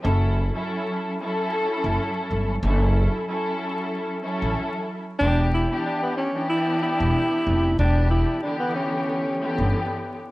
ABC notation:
X:1
M:4/4
L:1/16
Q:"Swing 16ths" 1/4=93
K:Edor
V:1 name="Tenor saxophone"
z16 | z16 | D2 E2 D B, C2 E2 E6 | D2 E2 D B, C6- C z3 |]
V:2 name="String section"
[F,CEA]3 [F,CEA]4 [F,CEA]8 z | [F,CEA]4 [F,CEA]6 [F,CEA]4- [F,CEA] z | [E,B,DG]3 [E,B,DG]4 [E,B,DG]8 z | [E,B,DG]4 [D,E,B,G]6 [D,E,B,G]4- [D,E,B,G] z |]
V:3 name="Upright bass" clef=bass
F,,,3 z8 F,,, z2 G,,,2 | F,,,3 z8 A,,, z4 | E,,,3 z8 E,,, z2 =F,,,2 | E,,,3 z8 G,,, z4 |]